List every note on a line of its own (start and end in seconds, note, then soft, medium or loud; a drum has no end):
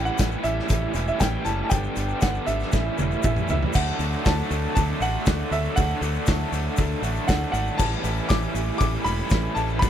0.00 0.17 A2 medium
0.00 0.18 E3 medium
0.00 0.18 G3 medium
0.00 0.18 C#4 loud
0.00 0.19 E4 loud
0.05 0.45 F#5 medium
0.05 shaker soft
0.18 0.35 A1 medium
0.18 0.42 A2 medium
0.18 0.44 E3 medium
0.18 0.44 G3 medium
0.18 0.44 C#4 medium
0.18 0.45 E4 loud
0.18 kick loud
0.18 snare loud
0.18 closed hi-hat loud
0.18 shaker loud
0.32 shaker soft
0.44 0.59 A1 medium
0.44 0.68 A2 medium
0.44 0.68 E3 medium
0.44 0.68 G3 medium
0.44 0.69 C#4 medium
0.44 0.69 E4 medium
0.44 1.07 E5 medium
0.44 closed hi-hat medium
0.44 shaker medium
0.59 snare soft
0.69 0.85 A1 medium
0.69 0.93 A2 loud
0.69 0.94 E3 loud
0.69 0.94 G3 loud
0.69 0.95 C#4 loud
0.69 0.95 E4 loud
0.69 kick loud
0.69 closed hi-hat medium
0.69 shaker loud
0.94 1.10 E1 medium
0.94 1.19 A2 medium
0.94 1.19 E3 medium
0.94 1.19 G3 medium
0.94 1.20 C#4 medium
0.94 1.20 E4 loud
0.94 closed hi-hat medium
0.94 shaker medium
1.08 1.21 E5 medium
1.08 shaker soft
1.20 1.36 A1 medium
1.20 1.44 A2 loud
1.20 1.45 E3 loud
1.20 1.45 G3 loud
1.20 1.46 C#4 loud
1.20 1.46 E4 loud
1.20 1.47 G5 medium
1.20 kick loud
1.20 snare loud
1.20 closed hi-hat medium
1.20 shaker loud
1.45 1.61 F#1 medium
1.45 1.70 A2 medium
1.45 1.70 E3 medium
1.45 1.70 G3 medium
1.45 1.70 C#4 medium
1.45 1.70 E4 medium
1.45 1.62 A5 medium
1.45 closed hi-hat medium
1.45 shaker medium
1.64 1.71 A5 medium
1.70 1.87 G1 loud
1.70 1.95 G2 medium
1.70 1.95 D3 loud
1.70 1.96 G3 loud
1.70 1.96 B3 loud
1.70 1.97 D4 loud
1.70 2.23 G5 medium
1.70 kick loud
1.70 closed hi-hat loud
1.70 shaker loud
1.83 shaker soft
1.96 2.12 G1 medium
1.96 2.20 G2 medium
1.96 2.21 D3 medium
1.96 2.21 G3 medium
1.96 2.22 B3 medium
1.96 2.22 D4 medium
1.96 closed hi-hat medium
1.96 shaker medium
2.08 shaker soft
2.21 2.38 G1 medium
2.21 2.45 G2 medium
2.21 2.46 D3 medium
2.21 2.47 G3 medium
2.21 2.47 B3 loud
2.21 2.47 D4 medium
2.21 2.48 F#5 medium
2.21 kick loud
2.21 snare loud
2.21 closed hi-hat medium
2.21 shaker medium
2.34 shaker soft
2.46 2.63 G#1 medium
2.46 2.71 G2 medium
2.46 2.71 D3 medium
2.46 2.71 G3 medium
2.46 2.72 B3 medium
2.46 2.72 D4 medium
2.46 3.23 E5 medium
2.46 closed hi-hat medium
2.46 shaker medium
2.60 snare soft
2.60 shaker soft
2.71 2.88 A1 medium
2.71 2.96 A2 loud
2.71 2.97 E3 loud
2.71 2.97 G3 loud
2.71 2.98 C#4 loud
2.71 2.98 E4 loud
2.71 kick loud
2.71 snare medium
2.71 shaker loud
2.97 3.14 E1 medium
2.97 3.22 A2 medium
2.97 3.22 E3 medium
2.97 3.23 G3 medium
2.97 3.23 C#4 medium
2.97 3.24 E4 loud
2.97 high tom medium
2.97 shaker medium
3.11 shaker soft
3.23 3.39 A1 medium
3.23 3.47 A2 loud
3.23 3.48 E3 medium
3.23 3.48 G3 loud
3.23 3.49 C#4 loud
3.23 3.49 E4 loud
3.23 3.48 E5 medium
3.23 kick loud
3.23 mid tom medium
3.23 shaker loud
3.36 mid tom medium
3.36 shaker soft
3.48 3.64 C#2 medium
3.48 3.73 A2 medium
3.48 3.73 E3 medium
3.48 3.73 G3 medium
3.48 3.73 C#4 medium
3.48 3.73 E4 medium
3.48 3.76 E5 medium
3.48 floor tom loud
3.48 shaker medium
3.63 floor tom medium
3.73 3.90 D2 medium
3.73 3.99 D3 loud
3.73 3.99 F#3 loud
3.73 4.00 A3 loud
3.73 4.01 D4 loud
3.73 4.27 F#5 medium
3.73 kick loud
3.73 crash loud
3.73 shaker loud
3.87 shaker soft
3.99 4.14 D2 medium
3.99 4.23 D3 medium
3.99 4.24 F#3 medium
3.99 4.24 A3 medium
3.99 4.25 D4 medium
3.99 open hi-hat medium
3.99 shaker medium
4.12 shaker soft
4.24 4.41 D2 medium
4.24 4.49 D3 medium
4.24 4.50 F#3 medium
4.24 4.51 A3 loud
4.24 4.51 D4 loud
4.24 4.73 A5 medium
4.24 kick loud
4.24 snare loud
4.24 open hi-hat medium
4.24 shaker medium
4.38 shaker soft
4.50 4.66 D2 medium
4.50 4.74 D3 medium
4.50 4.74 F#3 medium
4.50 4.76 A3 medium
4.50 4.76 D4 loud
4.50 open hi-hat medium
4.50 shaker medium
4.75 4.92 D2 medium
4.75 5.00 D3 loud
4.75 5.00 F#3 loud
4.75 5.01 A3 loud
4.75 5.02 D4 loud
4.75 5.02 A5 medium
4.75 kick loud
4.75 open hi-hat medium
4.75 shaker medium
5.00 5.16 A1 medium
5.00 5.25 D3 medium
5.00 5.25 F#3 medium
5.00 5.26 A3 loud
5.00 5.27 D4 loud
5.00 5.54 F#5 medium
5.00 open hi-hat medium
5.00 shaker medium
5.26 5.42 D2 medium
5.26 5.49 D3 loud
5.26 5.50 F#3 medium
5.26 5.52 A3 loud
5.26 5.52 D4 loud
5.26 kick loud
5.26 snare loud
5.26 open hi-hat medium
5.26 shaker loud
5.51 5.67 D2 medium
5.51 5.75 D3 medium
5.51 5.76 F#3 medium
5.51 5.77 A3 medium
5.51 5.77 D4 medium
5.51 5.78 E5 medium
5.51 open hi-hat medium
5.51 shaker medium
5.65 shaker soft
5.76 5.93 D2 medium
5.76 6.00 D3 medium
5.76 6.01 F#3 loud
5.76 6.02 A3 loud
5.76 6.03 D4 loud
5.76 7.26 F#5 loud
5.76 kick loud
5.76 open hi-hat medium
5.76 shaker loud
5.90 shaker soft
6.01 6.17 D2 loud
6.01 6.25 D3 medium
6.01 6.26 F#3 medium
6.01 6.27 A3 medium
6.01 6.27 D4 medium
6.01 open hi-hat medium
6.01 shaker medium
6.14 shaker soft
6.26 6.43 D2 loud
6.26 6.51 D3 medium
6.26 6.51 F#3 medium
6.26 6.52 A3 medium
6.26 6.53 D4 medium
6.26 kick loud
6.26 snare loud
6.26 open hi-hat medium
6.26 shaker loud
6.39 shaker soft
6.52 6.68 D2 medium
6.52 6.76 D3 medium
6.52 6.77 F#3 medium
6.52 6.77 A3 medium
6.52 6.78 D4 medium
6.52 open hi-hat medium
6.52 shaker medium
6.77 6.94 D2 loud
6.77 7.01 D3 loud
6.77 7.02 F#3 medium
6.77 7.02 A3 loud
6.77 7.03 D4 loud
6.77 kick loud
6.77 open hi-hat medium
6.77 shaker loud
7.02 7.18 A1 medium
7.02 7.26 D3 medium
7.02 7.27 F#3 medium
7.02 7.27 A3 loud
7.02 7.28 D4 medium
7.02 open hi-hat medium
7.02 shaker medium
7.16 shaker soft
7.27 7.44 D2 medium
7.27 7.51 D3 loud
7.27 7.52 F#3 loud
7.27 7.52 A3 loud
7.27 7.53 D4 loud
7.27 7.50 F#5 medium
7.27 kick loud
7.27 snare loud
7.27 open hi-hat medium
7.27 shaker loud
7.52 7.69 G#1 medium
7.52 7.77 D3 medium
7.52 7.77 F#3 loud
7.52 7.78 A3 medium
7.52 7.79 D4 loud
7.52 7.79 F#5 loud
7.52 open hi-hat medium
7.52 shaker medium
7.68 shaker soft
7.78 7.95 A1 medium
7.78 8.01 A2 medium
7.78 8.03 E3 loud
7.78 8.03 G3 loud
7.78 8.03 C#4 loud
7.78 8.04 E4 loud
7.78 8.31 A5 loud
7.78 kick loud
7.78 crash loud
7.78 shaker loud
7.93 shaker soft
8.03 8.19 A1 loud
8.03 8.27 A2 medium
8.03 8.29 E3 medium
8.03 8.29 G3 medium
8.03 8.28 C#4 medium
8.03 8.30 E4 loud
8.03 open hi-hat medium
8.03 shaker medium
8.17 shaker soft
8.29 8.45 A1 loud
8.29 8.53 A2 loud
8.29 8.55 E3 loud
8.29 8.55 G3 medium
8.29 8.55 C#4 medium
8.29 8.56 E4 loud
8.29 8.77 D6 loud
8.29 kick loud
8.29 snare loud
8.29 open hi-hat medium
8.29 shaker loud
8.43 shaker soft
8.54 8.70 A1 medium
8.54 8.79 A2 medium
8.54 8.79 E3 medium
8.54 8.80 G3 medium
8.54 8.80 C#4 medium
8.54 8.81 E4 medium
8.54 open hi-hat medium
8.54 shaker medium
8.78 8.96 A1 medium
8.78 9.04 A2 loud
8.78 9.05 E3 loud
8.78 9.05 G3 loud
8.78 9.05 C#4 loud
8.78 9.06 E4 loud
8.78 9.06 D6 loud
8.78 kick loud
8.78 open hi-hat medium
8.78 shaker medium
9.04 9.21 E1 loud
9.04 9.30 A2 medium
9.04 9.30 E3 medium
9.04 9.31 G3 loud
9.04 9.31 C#4 loud
9.04 9.32 E4 medium
9.04 9.52 B5 loud
9.04 open hi-hat medium
9.04 shaker medium
9.18 shaker soft
9.30 9.47 A1 loud
9.30 9.55 A2 loud
9.30 9.56 E3 loud
9.30 9.56 G3 medium
9.30 9.57 C#4 loud
9.30 9.57 E4 loud
9.30 kick loud
9.30 snare loud
9.30 open hi-hat medium
9.30 shaker medium
9.55 9.84 A1 medium
9.55 9.80 A2 medium
9.55 9.81 E3 medium
9.55 9.81 G3 medium
9.55 9.81 C#4 medium
9.55 9.81 E4 medium
9.55 9.82 A5 loud
9.55 open hi-hat medium
9.55 shaker medium
9.69 shaker soft
9.79 9.90 G1 medium
9.79 9.90 G2 medium
9.79 9.90 D3 loud
9.79 9.90 G3 loud
9.79 9.90 B3 loud
9.79 9.90 B5 loud
9.79 kick loud
9.79 open hi-hat medium
9.79 shaker medium
9.83 9.90 D4 loud